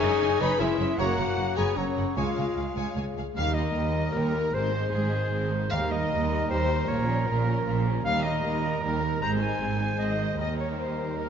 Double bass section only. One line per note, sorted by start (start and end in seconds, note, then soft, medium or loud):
0.01 0.09 F#1 medium
0.21 0.28 F#1 medium
0.40 0.48 F#1 medium
0.61 0.68 F#1 medium
0.79 0.87 F#1 medium
1.00 1.07 F#1 medium
1.18 1.26 F#1 medium
1.38 1.46 F#1 medium
1.58 1.65 F#1 medium
1.78 1.85 F#1 medium
1.97 2.05 F#1 soft
2.17 2.24 C#2 medium
2.36 2.44 C#2 soft
2.56 2.64 C#2 soft
2.76 2.84 C#2 medium
2.96 3.04 C#2 soft
3.16 3.24 C#2 soft
3.36 3.71 D#2 medium
3.75 4.10 D#2 medium
4.15 4.49 D#2 medium
4.54 4.88 G#1 medium
4.93 5.27 G#1 medium
5.31 5.66 G#1 medium
5.71 6.05 D#2 medium
6.11 6.45 D#2 medium
6.49 6.83 D#2 medium
6.88 7.22 A#1 medium
7.27 7.61 A#1 medium
7.66 8.00 A#1 medium
8.05 8.39 D#2 medium
8.43 8.78 D#2 medium
8.82 9.16 D#2 medium
9.21 9.56 G#1 medium
9.60 9.95 G#1 medium
9.98 10.33 G#1 medium
10.38 11.29 D#2 soft